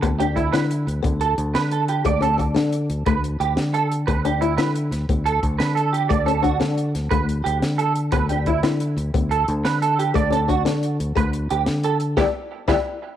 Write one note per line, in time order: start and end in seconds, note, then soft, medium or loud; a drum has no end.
0.02 0.50 D2 loud
0.02 0.11 B3 medium
0.02 muted clean electric guitar stroke medium
0.02 kick medium
0.02 closed hi-hat medium
0.20 0.28 D4 medium
0.20 0.32 G4 medium
0.20 closed hi-hat soft
0.36 0.49 E4 medium
0.36 0.45 E4 medium
0.36 kick medium
0.36 closed hi-hat soft
0.53 0.85 D3 medium
0.53 0.70 E4 medium
0.53 0.66 B4 medium
0.53 snare medium
0.53 closed hi-hat medium
0.71 closed hi-hat soft
0.87 1.03 D2 medium
0.87 closed hi-hat soft
1.03 1.36 D2 medium
1.03 1.20 B3 medium
1.03 kick medium
1.03 closed hi-hat medium
1.21 1.33 A4 medium
1.21 closed hi-hat medium
1.38 1.54 D2 medium
1.38 closed hi-hat medium
1.55 2.03 D3 medium
1.55 1.67 B4 medium
1.55 snare loud
1.55 closed hi-hat medium
1.71 1.85 A4 medium
1.71 closed hi-hat soft
1.88 2.01 G4 medium
1.88 closed hi-hat medium
2.05 2.53 D2 loud
2.05 2.13 A3 medium
2.05 2.18 D5 medium
2.05 kick medium
2.05 closed hi-hat medium
2.21 2.30 C#4 medium
2.21 2.35 A4 medium
2.21 closed hi-hat soft
2.38 2.47 D4 medium
2.38 muted clean electric guitar stroke medium
2.38 kick medium
2.38 closed hi-hat soft
2.54 2.88 D3 loud
2.54 2.72 D4 medium
2.54 snare medium
2.54 closed hi-hat medium
2.72 closed hi-hat medium
2.90 3.05 D2 medium
2.90 closed hi-hat medium
3.06 3.38 D2 medium
3.06 3.23 A3 medium
3.06 3.19 B4 medium
3.06 kick medium
3.06 closed hi-hat medium
3.24 closed hi-hat soft
3.40 3.56 D2 medium
3.40 3.53 G4 medium
3.40 closed hi-hat soft
3.57 4.04 D3 medium
3.57 snare medium
3.57 closed hi-hat medium
3.74 3.87 A4 medium
3.74 closed hi-hat soft
3.92 closed hi-hat medium
4.07 4.55 D2 loud
4.07 4.16 B3 medium
4.07 4.20 B4 medium
4.07 kick medium
4.07 closed hi-hat medium
4.25 4.33 D4 medium
4.25 4.38 G4 medium
4.25 closed hi-hat medium
4.41 4.54 E4 medium
4.41 4.50 E4 medium
4.41 closed hi-hat soft
4.58 4.89 D3 medium
4.58 4.76 E4 medium
4.58 4.70 B4 medium
4.58 snare medium
4.58 closed hi-hat medium
4.75 closed hi-hat medium
4.91 5.07 D2 medium
4.91 snare soft
4.91 closed hi-hat medium
5.09 5.41 D2 medium
5.09 5.26 B3 medium
5.09 kick medium
5.09 closed hi-hat medium
5.26 5.38 A4 medium
5.26 closed hi-hat medium
5.43 5.59 D2 medium
5.43 kick medium
5.43 closed hi-hat medium
5.59 6.07 D3 medium
5.59 5.72 B4 medium
5.59 snare medium
5.59 closed hi-hat medium
5.75 5.88 A4 medium
5.75 closed hi-hat soft
5.93 6.06 G4 medium
5.93 closed hi-hat soft
6.09 6.58 D2 loud
6.09 6.18 A3 medium
6.09 6.22 D5 medium
6.09 kick medium
6.09 closed hi-hat medium
6.26 6.35 C#4 medium
6.26 6.39 A4 medium
6.26 closed hi-hat soft
6.42 6.51 D4 medium
6.42 6.56 F#4 medium
6.42 kick medium
6.42 closed hi-hat soft
6.60 6.93 D3 medium
6.60 6.77 D4 medium
6.60 snare loud
6.60 closed hi-hat medium
6.78 closed hi-hat soft
6.95 7.10 D2 medium
6.95 snare soft
6.95 closed hi-hat medium
7.11 7.43 D2 medium
7.11 7.28 A3 medium
7.11 7.23 B4 medium
7.11 kick medium
7.11 closed hi-hat medium
7.29 closed hi-hat soft
7.44 7.61 D2 medium
7.44 7.57 G4 medium
7.44 closed hi-hat medium
7.62 8.10 D3 medium
7.62 snare medium
7.62 closed hi-hat medium
7.78 7.91 A4 medium
7.78 closed hi-hat medium
7.96 closed hi-hat medium
8.12 8.60 D2 loud
8.12 8.21 B3 loud
8.12 8.25 B4 medium
8.12 kick medium
8.12 closed hi-hat medium
8.29 8.38 D4 medium
8.29 8.42 G4 medium
8.29 closed hi-hat medium
8.46 8.59 E4 medium
8.46 8.56 E4 medium
8.46 kick medium
8.46 closed hi-hat soft
8.63 8.95 D3 medium
8.63 8.80 E4 medium
8.63 muted clean electric guitar stroke medium
8.63 snare medium
8.63 closed hi-hat medium
8.80 closed hi-hat medium
8.97 9.13 D2 medium
8.97 closed hi-hat soft
9.14 9.46 D2 loud
9.14 9.31 B3 medium
9.14 kick medium
9.14 closed hi-hat medium
9.31 9.44 A4 medium
9.31 closed hi-hat soft
9.48 9.64 D2 loud
9.48 closed hi-hat soft
9.64 10.12 D3 medium
9.64 9.77 B4 medium
9.64 snare medium
9.64 closed hi-hat medium
9.82 9.94 A4 medium
9.82 closed hi-hat soft
9.99 10.11 G4 medium
9.99 closed hi-hat medium
10.14 10.63 D2 loud
10.14 10.23 A3 loud
10.14 10.28 D5 medium
10.14 kick medium
10.14 closed hi-hat medium
10.30 10.39 C#4 medium
10.30 10.45 A4 medium
10.30 closed hi-hat medium
10.48 10.57 D4 medium
10.48 10.61 F#4 medium
10.48 kick medium
10.48 closed hi-hat medium
10.65 10.98 D3 loud
10.65 10.82 D4 medium
10.65 snare medium
10.65 closed hi-hat medium
10.83 closed hi-hat soft
11.00 11.15 D2 medium
11.00 closed hi-hat medium
11.15 11.48 D2 medium
11.15 11.33 A3 medium
11.15 11.29 B4 medium
11.15 kick loud
11.15 closed hi-hat medium
11.33 closed hi-hat soft
11.50 11.66 D2 medium
11.50 11.63 G4 medium
11.50 closed hi-hat soft
11.66 12.15 D3 medium
11.66 snare medium
11.66 closed hi-hat medium
11.84 11.97 A4 medium
11.84 closed hi-hat soft
12.00 closed hi-hat soft
12.17 12.24 D2 medium
12.17 12.23 G3 medium
12.17 12.23 B3 medium
12.17 12.23 E4 medium
12.17 12.23 G4 loud
12.17 12.23 B4 medium
12.17 kick medium
12.17 snare medium
12.68 12.74 D2 loud
12.68 12.73 G3 medium
12.68 12.73 B3 loud
12.68 12.73 E4 loud
12.68 12.74 E4 medium
12.68 12.74 G4 medium
12.68 12.74 B4 medium
12.68 kick medium
12.68 snare medium